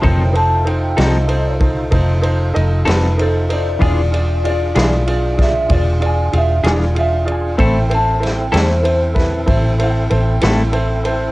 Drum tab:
RD |xxxxxxxxxxxx|xxxxxxxxxxxx|xxxxxxxxxxxx|
SD |---o-----o--|---o-o---o--|--oo-o---o--|
BD |o----oo-----|o----oo-----|o----oo-----|